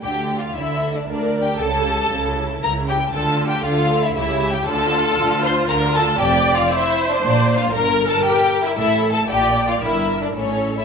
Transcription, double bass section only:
\new Staff \with { instrumentName = "Double bass section" } { \clef bass \time 3/4 \key d \minor \tempo 4 = 116 d,4 d,4 d,4 | cis,4 cis,4 cis,4 | d,4 d,4 cis,4 | d,4 d,4 d,4 |
f,,4 r4 bes,,4 | g,,4 r4 a,,4 | bes,,4 g,,4 a,,4 | }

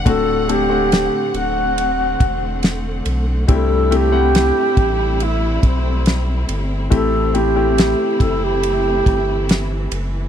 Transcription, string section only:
\new Staff \with { instrumentName = "String section" } { \time 4/4 \key c \lydian \tempo 4 = 70 << { <a c' fis''>1 | <g e'>1 | <e a e'>1 | } \\ { d1 | c'1~ | c'1 | } >> }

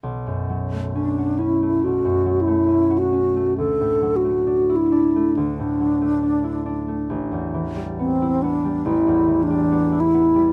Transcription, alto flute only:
\new Staff \with { instrumentName = "Alto flute" } { \time 4/4 \key b \minor \tempo 4 = 69 r4 d'8 e'8 \tuplet 3/2 { fis'4 e'8~ e'8 fis'4 } | \tuplet 3/2 { a'4 fis'8~ fis'8 e'4 } d'2 | r4 c'8 d'8 \tuplet 3/2 { e'4 d'8~ d'8 e'4 } | }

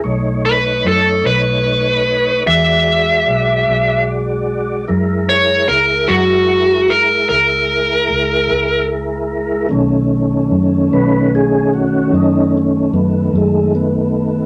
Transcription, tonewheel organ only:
<<
  \new Staff \with { instrumentName = "Tonewheel organ" } { \time 12/8 \key b \mixolydian \tempo 4. = 50 <a dis' cis''>2. <gis fis' d''>2. | <gis e' ais'>1. | r4. b'8 gis'8 fis'8 dis'8 cis'8 b8 gis8 b4 | }
  \new Staff \with { instrumentName = "Tonewheel organ" } { \time 12/8 \key b \mixolydian r1. | r1. | <dis a cis'>1. | }
>>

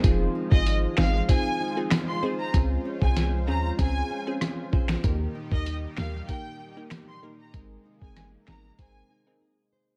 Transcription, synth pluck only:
\new Staff \with { instrumentName = "Synth pluck" } { \time 4/4 \key f \minor \tempo 4 = 96 <c' ees' f' aes'>8. <c' ees' f' aes'>16 r8 <c' ees' f' aes'>16 r16 <c' ees' f' aes'>8. <c' ees' f' aes'>16 r8 <c' ees' f' aes'>16 r16 | <c' des' f' aes'>8. <c' des' f' aes'>16 r8 <c' des' f' aes'>16 r16 <c' des' f' aes'>8. <c' des' f' aes'>8. <c' des' f' aes'>8 | <bes ees' g' bes'>8. <bes ees' g' bes'>16 r8 <bes ees' g' bes'>16 r16 <bes ees' g' bes'>8. <bes ees' g' bes'>8. <bes ees' g' bes'>8 | <c' ees' aes' bes'>8. <c' ees' aes' bes'>16 r8 <c' ees' aes' bes'>16 r16 <c' ees' aes' bes'>8. <c' ees' aes' bes'>16 r4 | }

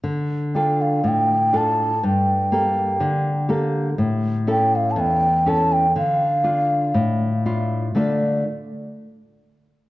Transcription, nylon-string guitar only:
\new Staff \with { instrumentName = "Nylon-string guitar" } { \time 2/4 \key d \minor \tempo 4 = 61 d8 <d' f' a'>8 a,8 <d' f' a'>8 | g,8 <bes g' a'>8 d8 <bes g' a'>8 | a,8 <cis' e' a'>8 e,8 <cis' e' a'>8 | d8 <d' f'>8 a,8 <d' e' f'>8 |
<d a d' f' a'>8 r4. | }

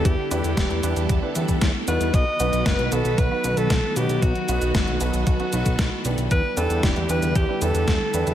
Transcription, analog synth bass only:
\new Staff \with { instrumentName = "Analog synth bass" } { \clef bass \time 4/4 \key e \minor \tempo 4 = 115 e,16 r16 e,16 e,16 e,,16 e,16 e,16 e,16 e,16 r16 e,16 e,16 e,16 r16 e,16 e,16 | b,,16 r16 b,,16 b,,16 fis,,16 b,,16 b,,16 b,,16 b,,16 r16 b,,16 b,,16 b,,16 r16 b,,16 b,,16 | b,,16 r16 b,,16 b,,16 fis,,16 b,,16 b,,16 b,,16 b,,16 r16 b,,16 b,,16 b,,16 r16 b,,16 b,,16 | e,16 r16 e,16 e,16 e,,16 e,16 e,16 e,16 e,16 r16 e,16 e,16 e,16 r16 e,16 e,16 | }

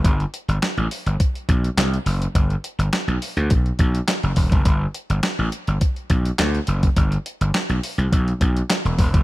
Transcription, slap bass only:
\new Staff \with { instrumentName = "Slap bass" } { \clef bass \time 4/4 \key g \major \tempo 4 = 104 g,,8 r16 g,,16 r16 a,,16 r16 g,,16 r8 b,,8 c,8 fis,,8 | g,,8 r16 g,,16 r16 b,,16 r16 d,16 b,,8 b,,8 r16 fis,,16 e,,16 fis,,16 | g,,8 r16 g,,16 r16 a,,16 r16 g,,16 r8 b,,8 d,8 fis,,8 | g,,8 r16 g,,16 r16 b,,16 r16 c,16 b,,8 b,,8 r16 e,,16 e,,16 fis,,16 | }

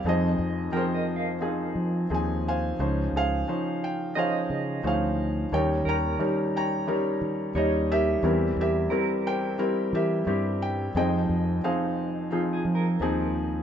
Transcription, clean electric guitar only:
\new Staff \with { instrumentName = "Clean electric guitar" } { \time 4/4 \key f \minor \tempo 4 = 88 <c'' g''>4 bes'16 ees''16 f''2~ f''8~ | f''8 r4. ees''2~ | ees''8 bes'2~ bes'8 des''4~ | des''8 r8 bes'2. |
r2 f'16 aes'16 bes'4. | }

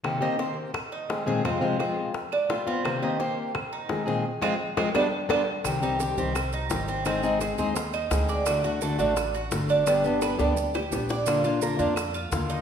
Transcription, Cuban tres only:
\new Staff \with { instrumentName = "Cuban tres" } { \time 4/4 \key c \minor \tempo 4 = 171 r8 ees'8 c''8 r4 ees'4 aes'8 | c'4 aes'8 r4 d'8 f'8 c'8~ | c'8 ees'8 c''8 r4 ees'4 aes'8 | r8 <aes c' f'>8 r8 <aes c' f'>8 <d' f' g'>8 r8 <d' f' g'>8 r8 |
r8 ees'8 g'8 c'4 ees'4 c'8 | c'4 aes'8 c''4 ees'4 d''8~ | d''8 fis'8 a'8 d'4 fis'4 d'8 | d'4 b'8 d''4 g'4 d''8~ |
d''8 f'8 bes'8 d'4 f'4 ees'8 | }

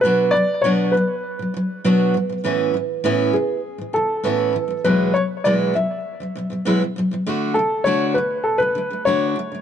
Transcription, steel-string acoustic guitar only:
\new Staff \with { instrumentName = "Steel-string acoustic guitar" } { \clef bass \time 4/4 \key a \major \tempo 4 = 100 <b, fis b d' fis'>8 <b, fis>8 <b, fis b d' fis'>8 <b, fis>8 r16 <b, fis>16 <b, fis>8 <b, fis b d' fis'>8 b,16 <b, fis>16 | <a, e b cis' e'>8 <a, e>8 <a, e b cis' e'>8 <a, e>8 r16 <a, e>16 <a, e>8 <a, e b cis' e'>8 <a, e>16 <a, e>16 | <e, b, fis gis b e'>8 <e, b, fis>8 <e, b, fis gis b e'>8 <e, b, fis>8 r16 <e, b, fis>16 <e, b, fis>16 <e, b, fis>16 <e, b, fis gis b e'>16 <e, b,>16 <e, b, fis>16 <e, b, fis>16 | <d a d' fis'>8 <d a>8 <d a d' fis'>8 <d a>8 r16 <d a>16 <d a>16 <d a>16 <d a d' fis'>8 <d a>16 <d a>16 | }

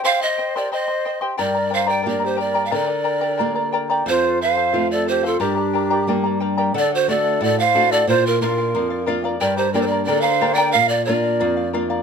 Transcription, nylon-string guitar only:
\new Staff \with { instrumentName = "Nylon-string guitar" } { \time 2/4 \key g \minor \tempo 4 = 90 r2 | g,4 <bes d' g'>4 | d4 <bes d' g'>4 | f,4 <a c' f'>4 |
g,4 <g bes d'>4 | d8 <a d' fis'>8 a,8 <a d' fis'>8 | bes,8 <bes d' f'>8 f,8 <bes d' f'>8 | g,8 <bes d' g'>8 d8 <bes d' g'>8 |
bes,8 <bes d' f'>8 f,8 <bes d' f'>8 | }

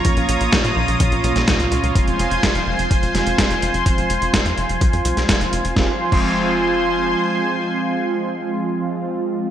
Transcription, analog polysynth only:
\new Staff \with { instrumentName = "Analog polysynth" } { \time 4/4 \key f \minor \tempo 4 = 126 <bes, f bes des' f'>2~ <bes, f bes des' f'>8 <bes, f bes des' f'>4. | <f aes c'>2~ <f aes c'>8 <f aes c' f'>4. | <f aes c' f'>2~ <f aes c' f'>8 <f aes c' f'>4. | <f aes c' f'>16 r8 <f aes c' f'>2.~ <f aes c' f'>16~ |
<f aes c' f'>1 | }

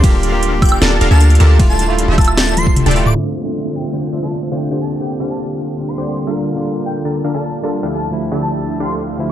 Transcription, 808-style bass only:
\new Staff \with { instrumentName = "808-style bass" } { \clef bass \time 4/4 \key d \minor \tempo 4 = 154 d,,2 d,,8 d,,16 d,8. d,8 | d,,4~ d,,16 d,,2 d,,8. | r1 | r1 |
r1 | r1 | }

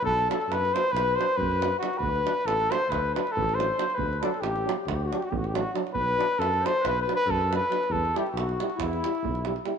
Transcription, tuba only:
\new Staff \with { instrumentName = "Tuba" } { \clef bass \time 9/8 \key b \phrygian \tempo 4. = 92 b,,4 fis,4 b,,4 fis,4. | d,4 a,,4 d,4 a,,4. | d,4 a,,4 d,4 a,,4. | b,,4 fis,4 b,,4 fis,4. |
e,4 b,,4 e,4 b,,4. | }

